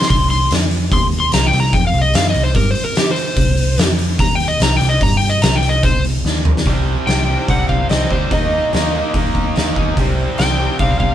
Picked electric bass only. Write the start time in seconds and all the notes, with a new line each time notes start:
0.10 C2
0.52 F2
0.92 D#2
1.33 C2
1.53 C2
1.73 F2
1.94 C2
2.14 F#2
2.35 C2
2.55 G2
3.37 C2
3.78 F2
4.19 D#2
4.60 C2
4.81 C2
5.01 G2
5.43 C2
6.25 D#2
6.66 C2
7.07 C2
7.49 C2
7.69 C2
7.90 C2
8.10 D2
8.31 D#2
8.73 D#2
9.14 D#2
9.35 D#2
9.57 D#2
9.76 D#2
9.97 C2
10.39 C2
10.79 C2
11.00 C2